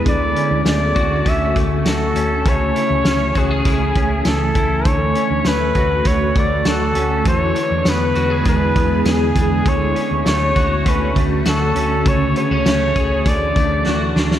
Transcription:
Already playing: D3 B3 D4 G#4
0.05 D2 D3 A3 F#4 D5, kick, closed hi-hat
0.36 C#4, closed hi-hat
0.51 D2
0.65 D2 A3 D5, snare, closed hi-hat, tambourine
0.95 D2 F#4, kick, closed hi-hat
1.25 D2 C#4 E5, kick, closed hi-hat
1.56 D2 A3, kick, closed hi-hat
1.85 D2 F#4 A4, snare, closed hi-hat, tambourine
2.15 D2 C#4, closed hi-hat
2.45 C#2 C#3 E3 C#5 G#5, kick, closed hi-hat
2.75 E4, closed hi-hat
2.90 C#2
3.05 C#2 C#4, snare, closed hi-hat, tambourine
3.35 C#2 F#4 G#4, kick, closed hi-hat
3.51 G#4
3.65 C#2 E4, kick, closed hi-hat
3.95 C#2 C#4, kick, closed hi-hat
4.25 C#2 A4, snare, closed hi-hat, tambourine
4.55 C#2 E4, kick, closed hi-hat
4.85 D2 D3 F#4 C#5, kick, closed hi-hat
5.15 C#4, closed hi-hat
5.30 D2
5.45 D2 A3 B4, snare, closed hi-hat, tambourine
5.75 D2 F#4, kick, closed hi-hat
6.05 D2 C#5, kick, closed hi-hat
6.35 D2 A3 D5, kick, closed hi-hat
6.65 D2 F#4 A4, snare, closed hi-hat, tambourine
6.95 D2 C#4, closed hi-hat
7.25 E2 E3 G#3 B3 E4 G#4 C#5, kick, closed hi-hat
7.55 D4, closed hi-hat
7.71 E2
7.85 E2 B3 B4, snare, closed hi-hat, tambourine
8.15 E2 F#4, closed hi-hat
8.30 G#4
8.45 E2 D4 B4, kick, closed hi-hat
8.75 E2 B3, kick, closed hi-hat
9.05 E2 G#4, snare, closed hi-hat, tambourine
9.35 E2 D4, kick, closed hi-hat
9.65 D2 D3 A3 C#4 F#4 C#5, kick, closed hi-hat
9.95 C#4, closed hi-hat
10.11 D2
10.25 D2 A3 C#5, snare, closed hi-hat, tambourine
10.55 D2 F#4, kick, closed hi-hat
10.86 D2 C#4 B4, kick, closed hi-hat
11.15 D2 A3, kick, closed hi-hat
11.45 D2 F#4, snare, closed hi-hat, tambourine
11.49 A4
11.76 D2 C#4, closed hi-hat
12.06 C#2 C#3 E3 C#5, kick, closed hi-hat
12.36 B3 C#5, closed hi-hat
12.51 C#2 C#4
12.66 C#2 A3, snare, closed hi-hat, tambourine
12.96 C#2 G#4, kick, closed hi-hat
13.26 D2 D3 D5, kick, closed hi-hat
13.56 D2 A3, kick, closed hi-hat
13.86 D2 F#4, snare
14.16 D2 D4, snare
14.31 snare

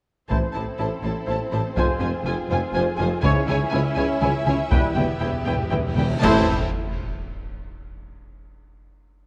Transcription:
0.29 A1 A2 E3 A3 C4 E4 A4 C5 A5, taiko
0.54 A1 A2 E4 C5 A5
0.78 A1 A2 E4 C5 A5
1.02 A1 A2 E4 C5 A5
1.27 A1 A2 E4 C5 A5
1.52 A1 A2 E4 C5 A5
1.76 F1 F2 C3 F3 G#3 C4 F4 G#4 C5 G#5, taiko
2.00 F1 F2 F4 C5 G#5
2.25 F1 F2 F4 C5 G#5
2.49 F1 F2 F4 C5 G#5
2.73 F1 F2 F4 C5 G#5
2.97 F1 F2 F4 C5 G#5
3.21 C#2 G#2 E3 G#3 C#4 E4 C#5 E5 G#5, taiko
3.48 C#2 E4 C#5 G#5, taiko mid
3.70 C#2 E4 G#5
3.74 C#5
3.96 C#2 E4 C#5 G#5
4.21 C#2 E4 C#5 G#5, taiko mid
4.45 C#2 E4 C#5 G#5, taiko mid
4.70 E1 E2 B2 E3 G3 B3 E4 G4 B4 G5, taiko, reverse cymbal
4.79 E2
4.86 E2
4.94 E1 E2 E4 B4 G5, taiko mid
5.02 E2
5.10 E2
5.17 E1 E2 G5
5.21 E2 E4 B4
5.32 E2
5.40 E2
5.45 E1 E2 E4 B4 G5
5.55 E2
5.63 E2
5.71 E1 E2 E4 B4 G5, taiko mid
5.78 E2
5.86 E2
5.94 E1 E2 E4 B4 G5, taiko mid
6.02 E2
6.10 E2
6.21 A1 A2 E3 A3 C4 E4 A4 C5 E5 A5, concert bass drum, crash, sub drop

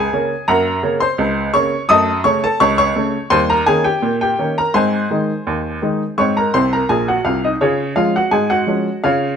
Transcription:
Already playing: G#4 G#5
0.13 C#3 A#3 C#4
0.48 F#2 A#3 A#4 F#5 A#5
0.83 C#3 A#3 C#4
1.00 C5 C6
1.18 C#2
1.54 C#3 A#3 C#4 C#5 C#6
1.89 F#2 A3 D#5 A5 D#6
2.24 C#3 A3 C#4 C#5 C#6
2.44 A4 A5
2.60 C#2 C#5 C#6
2.78 C#5 C#6
2.96 C#3 A3 C#4
3.30 D#2 G3 C5 C6
3.50 A#4 A#5
3.66 D#3 A#3 C#4 G#4 G#5
3.84 G4 G5
4.02 A#2
4.21 G4 G5
4.39 D#3 A#3 C#4
4.58 A#4 A#5
4.74 G#2 C4 C5 G#5 C6
5.11 D#3 G#3 D#4
5.47 D#2
5.82 D#3 G#3 D#4
6.18 G#2 C4 C#5 C#6
6.37 A#4 A#5
6.54 C2 C3 C5 C6
6.73 A#4 A#5
6.89 A#1 A#2 G#4 G#5
7.08 F#4 F#5
7.25 C2 C3 F4 F5
7.44 D#4 D#5
7.61 C#3 C#4 F4 G#4 C#5
7.96 F3 G#3 C#4 F4 F5
8.16 F#4 F#5
8.31 G#2 G#4 G#5
8.50 F#4 F#5
8.67 F3 G#3 C#4
9.04 C#3 F4 C#5 F5

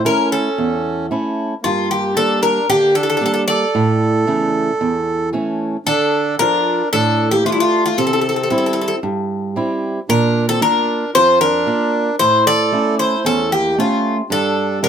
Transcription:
0.04 A3 C#4 E4 A#4
0.31 C#4 A4
0.58 E2
1.11 A3 C#4 E4
1.62 G2 A#3 F4
1.88 A#3 G4
2.15 G3 A#3 D4 A4
2.40 D4 A#4
2.68 D3 A#3 G4
2.95 D4 A4
3.03 A4
3.10 A4
3.17 G3 A4
3.21 A#3 D4
3.26 A4
3.34 A4
3.48 A4 D5
3.75 A2
4.27 C#3 E3 A3
4.81 E2
5.33 E3 A3 C#4
5.86 D3 D4 A4
6.39 F3 D4 F4 A#4
6.92 A2 D4 A4
7.31 A#3 G4
7.45 A3 D4 F4
7.52 G3 E4
7.60 A3 F4
7.85 A3 F4
7.98 C3 C4 A4
8.07 A4
8.13 A4
8.21 A4
8.29 A4
8.36 A4
8.43 A4
8.50 G3 C4 E4 A4
8.58 A4
8.66 A4
8.73 A4
8.81 A4
8.88 A4
9.03 G2
9.56 G3 C4 E4
10.09 A#2 D4 A#4
10.48 C4 A4
10.61 A#3 D4 F4 A#4
11.15 F2 F4 C5
11.40 D4 A#4
11.67 A#3 D4 F4
12.19 A2 E4 C5
12.46 A4 D5
12.72 A3 C#4 E4
12.98 E4 C5
13.25 E2 C#4 A4
13.50 A#3 G4
13.78 A3 C#4 F4 E5
14.30 G2 D4 A4
14.82 G3 B3 D4 A#4

